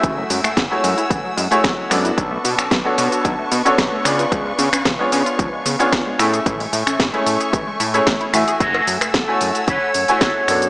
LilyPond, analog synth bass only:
\new Staff \with { instrumentName = "Analog synth bass" } { \clef bass \time 4/4 \key fis \minor \tempo 4 = 112 fis,,8 fis,16 fis,,16 fis,,16 r16 fis,16 r16 fis,,16 r16 fis,16 fis,,16 fis,,16 r16 fis,8 | b,,8 b,16 b,,16 b,,16 r16 b,16 r16 b,,16 r16 b,16 b,,16 b,,16 r16 cis8 | cis,8 cis16 cis,16 cis,16 r16 cis16 r16 cis,16 r16 cis16 cis,16 cis,16 r16 a,8 | a,,8 a,16 a,,16 a,,16 r16 a,16 r16 a,,16 r16 a,8 a,,16 r16 a,16 r16 |
fis,,8 fis,16 fis,,16 fis,,16 r16 fis,16 r16 fis,,16 r16 fis,16 fis,,16 fis,,16 r16 fis,8 | }